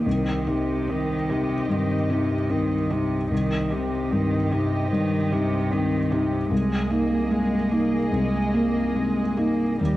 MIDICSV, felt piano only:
0, 0, Header, 1, 2, 480
1, 0, Start_track
1, 0, Tempo, 815217
1, 34, Time_signature, 4, 2, 24, 8
1, 1953, Tempo, 800000
1, 4353, Tempo, 827586
1, 5891, End_track
2, 0, Start_track
2, 0, Title_t, "Felt piano"
2, 0, Program_c, 0, 0
2, 0, Control_c, 0, 64, 127
2, 36, Note_on_c, 0, 36, 45
2, 46, Control_c, 0, 64, 0
2, 142, Control_c, 0, 64, 127
2, 274, Note_on_c, 0, 63, 37
2, 516, Note_on_c, 0, 60, 34
2, 665, Note_off_c, 0, 63, 0
2, 761, Note_on_c, 0, 63, 34
2, 903, Note_off_c, 0, 60, 0
2, 978, Note_off_c, 0, 36, 0
2, 998, Note_on_c, 0, 43, 33
2, 1142, Note_off_c, 0, 63, 0
2, 1235, Note_on_c, 0, 63, 34
2, 1380, Note_off_c, 0, 43, 0
2, 1469, Note_on_c, 0, 60, 32
2, 1619, Note_off_c, 0, 63, 0
2, 1710, Note_on_c, 0, 63, 39
2, 1853, Note_off_c, 0, 60, 0
2, 1950, Note_on_c, 0, 36, 45
2, 1962, Control_c, 0, 64, 0
2, 2058, Control_c, 0, 64, 127
2, 2094, Note_off_c, 0, 63, 0
2, 2194, Note_on_c, 0, 60, 37
2, 2437, Note_on_c, 0, 43, 39
2, 2580, Note_off_c, 0, 60, 0
2, 2675, Note_on_c, 0, 63, 33
2, 2824, Note_off_c, 0, 43, 0
2, 2894, Note_off_c, 0, 36, 0
2, 2919, Note_on_c, 0, 43, 39
2, 3064, Note_off_c, 0, 63, 0
2, 3159, Note_on_c, 0, 63, 36
2, 3303, Note_off_c, 0, 43, 0
2, 3399, Note_on_c, 0, 60, 38
2, 3540, Note_off_c, 0, 63, 0
2, 3634, Note_on_c, 0, 63, 46
2, 3777, Note_off_c, 0, 60, 0
2, 3869, Note_on_c, 0, 36, 53
2, 3872, Note_off_c, 0, 63, 0
2, 3882, Control_c, 0, 64, 0
2, 3985, Control_c, 0, 64, 127
2, 4106, Note_on_c, 0, 63, 43
2, 4352, Note_on_c, 0, 58, 41
2, 4491, Note_off_c, 0, 63, 0
2, 4586, Note_on_c, 0, 63, 38
2, 4729, Note_off_c, 0, 58, 0
2, 4800, Note_off_c, 0, 36, 0
2, 4820, Note_on_c, 0, 36, 45
2, 4967, Note_off_c, 0, 63, 0
2, 5064, Note_on_c, 0, 58, 38
2, 5302, Note_on_c, 0, 48, 34
2, 5446, Note_off_c, 0, 58, 0
2, 5544, Note_on_c, 0, 63, 39
2, 5691, Note_off_c, 0, 48, 0
2, 5764, Note_off_c, 0, 36, 0
2, 5790, Note_off_c, 0, 63, 0
2, 5797, Note_on_c, 0, 39, 44
2, 5802, Control_c, 0, 64, 0
2, 5891, Note_off_c, 0, 39, 0
2, 5891, End_track
0, 0, End_of_file